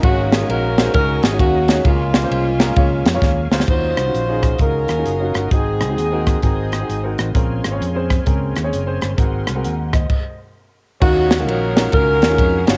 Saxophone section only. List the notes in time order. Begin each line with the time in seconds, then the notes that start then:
0.03 A#3 C#4 F#4
0.32 G#4
0.49 C#4 F#4 A#4
0.94 C#4 F#4 A#4
1.23 G#4
1.39 A#3 C#4 F#4
1.87 G#3 A#3 F4
3.70 F4 F#4 C5
4.61 C#4 F#4 A#4
5.51 C4 D#4 G#4
6.43 C4 D#4 G#4
11.02 A#3 C#4 F#4
11.47 C#4 F#4 A#4
11.94 C#4 F#4 A#4
12.68 F#4